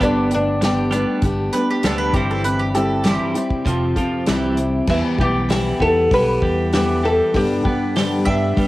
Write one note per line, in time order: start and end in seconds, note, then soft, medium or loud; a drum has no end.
0.00 1.04 G1 medium
0.00 0.32 G2 medium
0.00 0.32 D3 medium
0.00 0.29 G3 medium
0.00 0.32 A3 medium
0.00 0.32 B3 medium
0.00 0.31 D4 medium
0.00 0.33 D4 medium
0.00 0.30 G4 medium
0.00 kick medium
0.00 closed hi-hat medium
0.30 0.58 G3 medium
0.30 0.62 A3 soft
0.30 0.62 B3 soft
0.30 0.62 D4 soft
0.30 0.62 G4 medium
0.30 closed hi-hat medium
0.34 0.63 D4 medium
0.61 0.93 G2 medium
0.61 0.93 D3 medium
0.61 0.89 G3 medium
0.61 0.93 A3 medium
0.61 0.94 B3 medium
0.61 0.93 D4 medium
0.61 4.25 G4 medium
0.61 0.92 G4 medium
0.61 snare medium
0.61 closed hi-hat medium
0.91 1.21 G3 medium
0.91 1.23 B3 soft
0.91 1.23 D4 soft
0.91 1.24 G4 medium
0.91 closed hi-hat medium
0.95 1.22 A3 soft
1.22 1.49 G1 medium
1.22 1.51 G3 medium
1.22 1.54 A3 medium
1.22 1.54 B3 medium
1.22 1.53 D4 medium
1.22 1.53 G4 medium
1.22 kick medium
1.22 closed hi-hat medium
1.52 1.82 G3 medium
1.52 1.82 A3 soft
1.52 1.83 B3 soft
1.52 1.83 D4 soft
1.52 1.84 G4 soft
1.52 1.68 B4 medium
1.52 closed hi-hat medium
1.71 1.84 G4 medium
1.83 2.10 D2 medium
1.83 2.14 G2 medium
1.83 2.14 D3 medium
1.83 2.13 G3 medium
1.83 2.14 A3 medium
1.83 2.14 B3 medium
1.83 2.14 D4 medium
1.83 2.13 G4 medium
1.83 1.98 A4 medium
1.83 snare medium
1.83 closed hi-hat medium
1.98 2.13 B4 medium
2.13 3.17 G1 medium
2.13 2.76 G2 soft
2.13 2.76 E3 medium
2.13 2.75 G3 medium
2.13 2.75 C4 medium
2.13 2.75 E4 medium
2.13 2.28 G4 medium
2.13 2.73 G4 medium
2.13 kick medium
2.13 closed hi-hat medium
2.31 2.44 A4 medium
2.44 2.73 G3 medium
2.44 2.73 C4 medium
2.44 2.59 B4 medium
2.44 closed hi-hat medium
2.59 2.74 G4 medium
2.74 3.03 G3 soft
2.74 3.04 C4 soft
2.74 3.04 E4 soft
2.74 3.05 G4 medium
2.74 3.05 A4 medium
2.74 closed hi-hat medium
3.04 3.36 G2 medium
3.04 3.36 E3 medium
3.04 3.34 G3 medium
3.04 3.35 C4 medium
3.04 3.33 E4 medium
3.04 4.23 G4 medium
3.04 3.33 G4 medium
3.04 snare medium
3.04 closed hi-hat medium
3.34 3.64 G3 soft
3.34 3.65 C4 soft
3.34 3.66 E4 medium
3.34 3.66 G4 medium
3.34 closed hi-hat medium
3.50 kick medium
3.65 3.93 F1 medium
3.65 3.95 F2 medium
3.65 3.96 C3 medium
3.65 3.97 F3 medium
3.65 3.97 C4 medium
3.65 3.96 F4 medium
3.65 3.95 A4 medium
3.65 kick medium
3.65 closed hi-hat medium
3.96 4.26 F2 medium
3.96 4.26 C3 medium
3.96 4.26 F3 medium
3.96 4.26 C4 soft
3.96 4.27 F4 soft
3.96 4.27 A4 medium
3.96 kick medium
3.96 closed hi-hat medium
4.26 4.80 C2 medium
4.26 4.87 C3 medium
4.26 4.57 E3 medium
4.26 4.86 G3 medium
4.26 4.88 C4 medium
4.26 4.88 E4 medium
4.26 4.88 G4 medium
4.26 snare medium
4.26 closed hi-hat medium
4.57 4.86 C3 medium
4.57 4.86 E3 medium
4.57 closed hi-hat medium
4.87 5.01 E2 medium
4.87 6.43 E2 medium
4.87 5.19 E3 medium
4.87 5.19 G3 medium
4.87 5.19 B3 medium
4.87 5.18 E4 medium
4.87 4.98 E4 medium
4.87 5.17 G4 medium
4.87 kick medium
4.87 crash medium
5.18 5.71 B1 medium
5.18 6.42 G3 medium
5.18 5.48 B3 soft
5.18 5.49 E4 soft
5.18 5.49 G4 soft
5.18 5.81 G4 medium
5.18 kick medium
5.49 5.80 E3 medium
5.49 5.81 G3 medium
5.49 5.81 B3 medium
5.49 5.81 E4 medium
5.49 5.79 G4 medium
5.49 snare medium
5.49 open hi-hat soft
5.80 6.06 E2 medium
5.80 6.11 B3 soft
5.80 6.11 E4 soft
5.80 6.11 G4 soft
5.80 6.13 A4 medium
5.80 kick medium
6.11 6.38 B1 medium
6.11 6.72 E3 medium
6.11 6.74 G3 medium
6.11 6.73 B3 medium
6.11 6.74 E4 medium
6.11 6.75 G4 medium
6.11 6.70 B4 medium
6.11 kick medium
6.11 open hi-hat soft
6.42 7.20 E2 medium
6.42 7.03 G3 medium
6.42 kick medium
6.72 7.04 E3 medium
6.72 7.04 G3 medium
6.72 7.03 B3 medium
6.72 7.03 E4 medium
6.72 7.02 G4 medium
6.72 7.01 G4 medium
6.72 snare medium
6.72 open hi-hat soft
7.03 7.65 G3 medium
7.03 7.34 B3 soft
7.03 7.35 E4 soft
7.03 7.34 G4 soft
7.03 7.36 A4 medium
7.34 7.65 G2 medium
7.34 7.60 G2 loud
7.34 7.65 D3 medium
7.34 7.65 G3 medium
7.34 7.65 B3 medium
7.34 7.63 D4 medium
7.34 7.63 G4 medium
7.34 8.54 G4 medium
7.34 kick medium
7.34 open hi-hat soft
7.64 8.17 G3 medium
7.64 7.96 G3 soft
7.64 7.96 B3 soft
7.64 7.96 D4 soft
7.64 7.95 G4 soft
7.64 kick medium
7.95 8.27 G2 medium
7.95 8.27 D3 medium
7.95 8.26 G3 medium
7.95 8.26 B3 medium
7.95 8.26 D4 medium
7.95 8.25 G4 medium
7.95 snare medium
7.95 open hi-hat medium
8.25 8.53 G2 medium
8.25 8.55 G3 soft
8.25 8.57 B3 medium
8.25 8.56 D4 soft
8.25 8.57 G4 medium
8.25 8.68 E5 medium
8.25 kick medium
8.56 8.68 G3 medium
8.56 8.68 B3 medium
8.56 8.68 D4 medium
8.56 8.68 G4 medium
8.56 kick medium
8.56 open hi-hat soft